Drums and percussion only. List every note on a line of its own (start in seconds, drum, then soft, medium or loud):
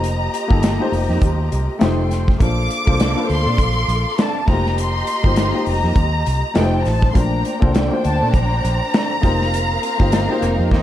0.04 closed hi-hat loud
0.34 closed hi-hat medium
0.50 kick loud
0.63 snare loud
0.63 closed hi-hat loud
0.93 open hi-hat medium
1.21 kick loud
1.21 closed hi-hat medium
1.52 closed hi-hat medium
1.81 snare loud
1.81 closed hi-hat medium
2.11 snare soft
2.11 closed hi-hat medium
2.28 kick loud
2.28 snare soft
2.40 kick loud
2.40 closed hi-hat loud
2.70 closed hi-hat medium
2.87 kick loud
3.00 snare loud
3.00 closed hi-hat loud
3.29 open hi-hat medium
3.58 kick loud
3.58 closed hi-hat loud
3.89 closed hi-hat medium
4.18 snare loud
4.18 closed hi-hat medium
4.48 kick loud
4.48 snare soft
4.48 crash medium
4.66 snare soft
4.78 closed hi-hat loud
5.07 closed hi-hat medium
5.24 kick loud
5.36 snare loud
5.36 closed hi-hat loud
5.66 open hi-hat medium
5.96 kick loud
5.96 closed hi-hat loud
6.26 closed hi-hat medium
6.55 snare loud
6.55 closed hi-hat medium
6.85 snare soft
6.85 open hi-hat soft
7.02 kick loud
7.02 snare soft
7.15 kick loud
7.15 closed hi-hat loud
7.45 closed hi-hat medium
7.62 kick loud
7.75 snare loud
7.75 closed hi-hat loud
8.04 closed hi-hat medium
8.34 kick loud
8.34 closed hi-hat medium
8.65 closed hi-hat medium
8.94 snare loud
8.94 closed hi-hat medium
9.23 kick loud
9.23 snare soft
9.23 closed hi-hat medium
9.41 snare soft
9.54 closed hi-hat loud
9.83 closed hi-hat medium
10.00 kick medium
10.12 snare loud
10.12 closed hi-hat loud
10.42 closed hi-hat medium
10.71 kick loud
10.71 snare medium